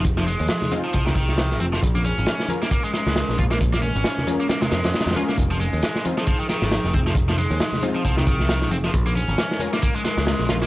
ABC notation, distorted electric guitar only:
X:1
M:4/4
L:1/16
Q:"Swing 16ths" 1/4=135
K:Fm
V:1 name="Distorted electric guitar" clef=bass
z F, A,4 z F, F, E, E,4 C F, | z B, D4 z B, B, A, A,4 F B, | z B, D4 z B, B, A, A,4 F B, | z F, A,4 z F, F, E, E,4 C F, |
z F, A,4 z F, F, E, E,4 C F, | z B, D4 z B, B, A, A,4 F B, |]